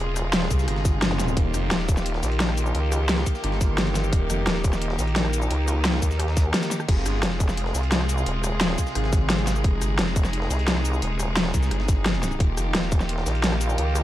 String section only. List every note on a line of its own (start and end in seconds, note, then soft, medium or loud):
0.00 1.33 C3 medium
0.00 1.33 G#3 medium
0.00 4.09 F4 medium
0.00 1.33 G#4 medium
1.37 6.84 D#3 medium
1.37 6.84 A#3 medium
1.37 6.84 G4 medium
4.13 6.86 D#4 medium
6.88 12.36 C3 medium
6.88 12.36 G#3 medium
6.88 9.62 F4 medium
6.88 12.36 G#4 medium
9.64 12.37 D#4 medium
12.40 14.03 D#3 medium
12.40 14.03 A#3 medium
12.40 14.03 F4 medium
12.40 14.03 G4 medium